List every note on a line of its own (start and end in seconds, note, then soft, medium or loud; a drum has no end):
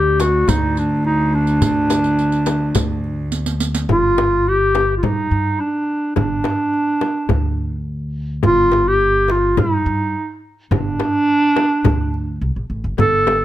0.00 0.44 D2 loud
0.00 3.94 D2 medium
0.00 0.22 G4 medium
0.20 0.50 F#4 medium
0.20 riq soft
0.20 darbuka tek medium
0.20 frame drum medium
0.48 1.58 D2 medium
0.48 0.80 D#4 medium
0.48 riq medium
0.48 darbuka dum medium
0.48 frame drum medium
0.76 1.05 D4 medium
0.76 riq soft
0.76 darbuka ka soft
1.05 1.36 D#4 medium
1.05 darbuka ka soft
1.33 3.32 D4 medium
1.33 darbuka ka soft
1.47 riq soft
1.61 2.71 D3 medium
1.61 riq medium
1.61 darbuka dum medium
1.61 frame drum medium
1.90 riq soft
1.90 darbuka tek medium
1.90 frame drum medium
2.04 riq soft
2.04 darbuka ka soft
2.19 riq soft
2.19 darbuka ka soft
2.32 riq soft
2.32 darbuka ka soft
2.46 riq soft
2.46 darbuka tek medium
2.46 frame drum medium
2.75 3.85 D2 medium
2.75 riq medium
2.75 darbuka dum medium
2.75 frame drum medium
3.04 darbuka ka soft
3.32 riq medium
3.46 riq medium
3.60 riq medium
3.75 riq medium
3.89 4.98 G1 medium
3.89 4.50 F4 medium
3.89 frame drum medium
3.89 darbuka dum medium
4.18 darbuka tek medium
4.18 frame drum medium
4.47 4.96 G4 loud
4.47 darbuka ka soft
4.75 darbuka tek medium
4.75 frame drum medium
4.97 5.05 F4 medium
5.03 5.29 G2 medium
5.03 5.61 D#4 medium
5.03 frame drum medium
5.03 darbuka dum medium
5.31 5.57 G2 medium
5.60 6.15 D4 medium
6.16 6.42 G1 medium
6.16 7.82 D4 medium
6.16 frame drum medium
6.16 darbuka dum medium
6.44 darbuka tek medium
6.44 frame drum medium
6.74 darbuka ka soft
7.01 darbuka tek medium
7.01 frame drum medium
7.29 8.39 D2 medium
7.29 frame drum medium
7.29 darbuka dum medium
8.43 9.53 G1 loud
8.43 8.89 F4 loud
8.43 frame drum medium
8.43 darbuka dum medium
8.72 darbuka tek medium
8.72 frame drum medium
8.88 9.33 G4 loud
9.01 darbuka ka soft
9.28 9.60 F4 medium
9.28 darbuka tek medium
9.28 frame drum medium
9.57 9.83 G2 medium
9.57 10.43 D#4 medium
9.57 frame drum medium
9.57 darbuka dum medium
9.86 10.12 G2 medium
10.71 10.97 G1 medium
10.71 12.38 D4 loud
10.71 frame drum medium
10.71 darbuka dum medium
11.00 darbuka tek medium
11.00 frame drum medium
11.29 darbuka ka soft
11.43 darbuka ka soft
11.56 darbuka tek medium
11.56 frame drum medium
11.84 12.38 D2 medium
11.84 frame drum medium
11.84 darbuka dum medium
12.14 darbuka ka soft
12.41 12.54 C2 medium
12.41 darbuka ka soft
12.56 12.69 A#1 medium
12.70 12.83 A1 medium
12.70 darbuka ka soft
12.84 12.97 G1 medium
12.84 darbuka ka soft
12.98 13.45 G1 medium
12.98 13.45 A4 loud
12.98 frame drum medium
12.98 darbuka dum medium
13.27 darbuka tek medium
13.27 frame drum medium